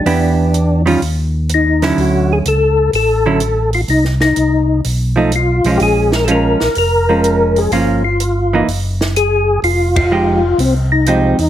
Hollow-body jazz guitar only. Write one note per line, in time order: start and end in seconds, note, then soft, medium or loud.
0.06 0.79 E3 medium
0.06 0.80 B3 medium
0.06 0.80 D4 medium
0.06 0.80 G4 medium
0.86 0.99 D#3 medium
0.86 1.00 G3 medium
0.86 1.00 C#4 medium
0.86 1.00 F4 medium
1.83 2.42 D3 medium
1.83 2.42 F#3 medium
1.83 2.42 C#4 medium
1.83 2.42 E4 medium
3.26 3.39 D3 medium
3.26 3.39 F#3 medium
3.26 3.40 C#4 medium
3.26 3.40 E4 medium
5.16 5.30 F3 medium
5.16 5.31 A3 medium
5.16 5.31 D#4 medium
5.66 6.25 F3 medium
5.66 6.26 G#3 medium
5.66 6.26 C#4 medium
6.28 6.57 F3 medium
6.28 6.57 G#3 medium
6.28 6.58 C#4 medium
7.09 7.69 F3 medium
7.09 7.69 G#3 medium
7.09 7.69 C#4 medium
7.73 8.01 F3 medium
7.73 8.01 A#3 soft
7.73 8.02 C#4 medium
8.53 8.66 E3 medium
8.53 8.67 A#3 medium
8.53 8.67 D#4 medium
10.11 10.40 F3 medium
10.11 10.40 G#3 medium
10.11 10.41 D#4 medium
10.11 10.41 G4 medium
11.07 11.36 F3 medium
11.07 11.36 G#3 medium
11.07 11.36 D#4 medium
11.07 11.37 G4 medium